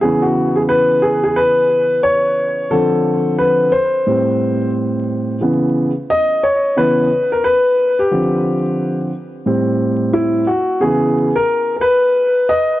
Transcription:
0, 0, Header, 1, 2, 480
1, 0, Start_track
1, 0, Tempo, 674157
1, 18, Time_signature, 4, 2, 24, 8
1, 9114, End_track
2, 0, Start_track
2, 0, Title_t, "Grand piano"
2, 0, Program_c, 0, 0
2, 8, Note_on_c, 0, 68, 85
2, 13, Note_on_c, 0, 49, 54
2, 17, Note_on_c, 0, 52, 48
2, 21, Note_on_c, 0, 59, 54
2, 157, Note_on_c, 0, 66, 69
2, 169, Note_off_c, 0, 68, 0
2, 386, Note_off_c, 0, 66, 0
2, 397, Note_on_c, 0, 68, 72
2, 433, Note_off_c, 0, 68, 0
2, 490, Note_on_c, 0, 71, 92
2, 727, Note_on_c, 0, 68, 87
2, 741, Note_off_c, 0, 71, 0
2, 869, Note_off_c, 0, 68, 0
2, 880, Note_on_c, 0, 68, 88
2, 970, Note_on_c, 0, 71, 97
2, 976, Note_off_c, 0, 68, 0
2, 1425, Note_off_c, 0, 71, 0
2, 1446, Note_on_c, 0, 73, 97
2, 1907, Note_off_c, 0, 49, 0
2, 1909, Note_off_c, 0, 52, 0
2, 1911, Note_off_c, 0, 59, 0
2, 1928, Note_on_c, 0, 69, 89
2, 1934, Note_on_c, 0, 50, 54
2, 1938, Note_on_c, 0, 53, 42
2, 1942, Note_on_c, 0, 60, 54
2, 1947, Note_off_c, 0, 73, 0
2, 2385, Note_off_c, 0, 69, 0
2, 2410, Note_on_c, 0, 71, 82
2, 2627, Note_off_c, 0, 50, 0
2, 2629, Note_off_c, 0, 53, 0
2, 2631, Note_off_c, 0, 60, 0
2, 2648, Note_on_c, 0, 72, 86
2, 2661, Note_off_c, 0, 71, 0
2, 2895, Note_on_c, 0, 45, 53
2, 2901, Note_on_c, 0, 55, 47
2, 2903, Note_on_c, 0, 60, 65
2, 3344, Note_off_c, 0, 72, 0
2, 3828, Note_off_c, 0, 45, 0
2, 3831, Note_off_c, 0, 55, 0
2, 3832, Note_off_c, 0, 60, 0
2, 3851, Note_on_c, 0, 49, 52
2, 3855, Note_on_c, 0, 52, 45
2, 3862, Note_on_c, 0, 59, 53
2, 4197, Note_off_c, 0, 49, 0
2, 4200, Note_off_c, 0, 52, 0
2, 4203, Note_off_c, 0, 59, 0
2, 4344, Note_on_c, 0, 75, 101
2, 4581, Note_on_c, 0, 73, 82
2, 4588, Note_off_c, 0, 75, 0
2, 4816, Note_on_c, 0, 49, 44
2, 4819, Note_on_c, 0, 52, 45
2, 4821, Note_on_c, 0, 59, 54
2, 4824, Note_on_c, 0, 71, 92
2, 4827, Note_off_c, 0, 73, 0
2, 5033, Note_off_c, 0, 49, 0
2, 5035, Note_off_c, 0, 52, 0
2, 5035, Note_off_c, 0, 59, 0
2, 5212, Note_on_c, 0, 70, 80
2, 5224, Note_off_c, 0, 71, 0
2, 5298, Note_on_c, 0, 71, 89
2, 5302, Note_off_c, 0, 70, 0
2, 5690, Note_on_c, 0, 67, 82
2, 5701, Note_off_c, 0, 71, 0
2, 5775, Note_on_c, 0, 50, 51
2, 5779, Note_on_c, 0, 53, 43
2, 5785, Note_on_c, 0, 60, 52
2, 6381, Note_off_c, 0, 67, 0
2, 6468, Note_off_c, 0, 50, 0
2, 6470, Note_off_c, 0, 53, 0
2, 6473, Note_off_c, 0, 60, 0
2, 6735, Note_on_c, 0, 45, 56
2, 6737, Note_on_c, 0, 55, 55
2, 6743, Note_on_c, 0, 60, 62
2, 7216, Note_on_c, 0, 64, 83
2, 7428, Note_off_c, 0, 45, 0
2, 7429, Note_off_c, 0, 55, 0
2, 7432, Note_off_c, 0, 60, 0
2, 7455, Note_on_c, 0, 66, 78
2, 7464, Note_off_c, 0, 64, 0
2, 7692, Note_on_c, 0, 49, 54
2, 7696, Note_on_c, 0, 52, 47
2, 7696, Note_on_c, 0, 68, 85
2, 7700, Note_on_c, 0, 59, 61
2, 7704, Note_off_c, 0, 66, 0
2, 8038, Note_off_c, 0, 49, 0
2, 8040, Note_off_c, 0, 52, 0
2, 8042, Note_off_c, 0, 59, 0
2, 8061, Note_off_c, 0, 68, 0
2, 8085, Note_on_c, 0, 70, 93
2, 8365, Note_off_c, 0, 70, 0
2, 8376, Note_on_c, 0, 70, 65
2, 8411, Note_on_c, 0, 71, 94
2, 8415, Note_off_c, 0, 70, 0
2, 8893, Note_on_c, 0, 75, 93
2, 8909, Note_off_c, 0, 71, 0
2, 9114, Note_off_c, 0, 75, 0
2, 9114, End_track
0, 0, End_of_file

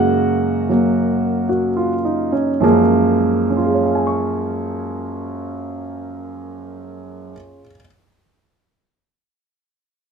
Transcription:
0, 0, Header, 1, 2, 480
1, 0, Start_track
1, 0, Key_signature, 6, "major"
1, 0, Tempo, 736196
1, 628, Tempo, 801068
1, 1108, Tempo, 878477
1, 1582, Time_signature, 4, 2, 24, 8
1, 5670, End_track
2, 0, Start_track
2, 0, Title_t, "Grand piano"
2, 0, Program_c, 0, 0
2, 0, Note_on_c, 0, 42, 52
2, 0, Note_on_c, 0, 49, 49
2, 0, Note_on_c, 0, 56, 48
2, 0, Note_on_c, 0, 58, 59
2, 0, Note_on_c, 0, 66, 65
2, 0, Note_on_c, 0, 78, 82
2, 452, Note_on_c, 0, 54, 39
2, 457, Note_off_c, 0, 58, 0
2, 467, Note_on_c, 0, 58, 48
2, 936, Note_off_c, 0, 66, 0
2, 945, Note_on_c, 0, 66, 41
2, 1066, Note_off_c, 0, 78, 0
2, 1109, Note_on_c, 0, 65, 42
2, 1195, Note_off_c, 0, 66, 0
2, 1263, Note_on_c, 0, 63, 45
2, 1405, Note_off_c, 0, 65, 0
2, 1413, Note_on_c, 0, 61, 46
2, 1511, Note_off_c, 0, 63, 0
2, 1559, Note_off_c, 0, 42, 0
2, 1567, Note_on_c, 0, 42, 56
2, 1569, Note_off_c, 0, 56, 0
2, 1570, Note_on_c, 0, 53, 54
2, 1577, Note_off_c, 0, 58, 0
2, 1577, Note_on_c, 0, 56, 54
2, 1578, Note_off_c, 0, 49, 0
2, 1578, Note_off_c, 0, 54, 0
2, 1585, Note_on_c, 0, 58, 63
2, 1671, Note_off_c, 0, 61, 0
2, 2057, Note_on_c, 0, 61, 37
2, 2095, Note_on_c, 0, 65, 37
2, 2143, Note_on_c, 0, 68, 36
2, 2187, Note_on_c, 0, 73, 34
2, 2247, Note_on_c, 0, 77, 33
2, 2303, Note_on_c, 0, 80, 31
2, 2367, Note_on_c, 0, 85, 31
2, 4142, Note_off_c, 0, 42, 0
2, 4146, Note_off_c, 0, 53, 0
2, 4153, Note_off_c, 0, 56, 0
2, 4161, Note_off_c, 0, 58, 0
2, 4289, Note_off_c, 0, 61, 0
2, 4308, Note_off_c, 0, 65, 0
2, 4332, Note_off_c, 0, 68, 0
2, 4355, Note_off_c, 0, 73, 0
2, 4384, Note_off_c, 0, 77, 0
2, 4412, Note_off_c, 0, 80, 0
2, 4444, Note_off_c, 0, 85, 0
2, 5670, End_track
0, 0, End_of_file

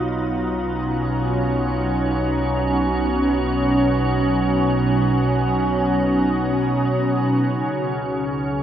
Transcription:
0, 0, Header, 1, 3, 480
1, 0, Start_track
1, 0, Tempo, 500000
1, 8284, End_track
2, 0, Start_track
2, 0, Title_t, "Ambient pad"
2, 0, Program_c, 0, 92
2, 0, Note_on_c, 0, 47, 70
2, 0, Note_on_c, 0, 54, 67
2, 0, Note_on_c, 0, 63, 75
2, 0, Note_on_c, 0, 65, 70
2, 441, Note_on_c, 0, 61, 81
2, 1823, Note_off_c, 0, 65, 0
2, 7090, Note_off_c, 0, 47, 0
2, 7091, Note_off_c, 0, 54, 0
2, 7097, Note_on_c, 0, 49, 83
2, 7109, Note_off_c, 0, 63, 0
2, 8284, Note_off_c, 0, 49, 0
2, 8284, Note_off_c, 0, 61, 0
2, 8284, End_track
3, 0, Start_track
3, 0, Title_t, "Analog synth bass"
3, 0, Program_c, 1, 38
3, 0, Note_on_c, 1, 35, 73
3, 7035, Note_off_c, 1, 35, 0
3, 7089, Note_on_c, 1, 37, 80
3, 8284, Note_off_c, 1, 37, 0
3, 8284, End_track
0, 0, End_of_file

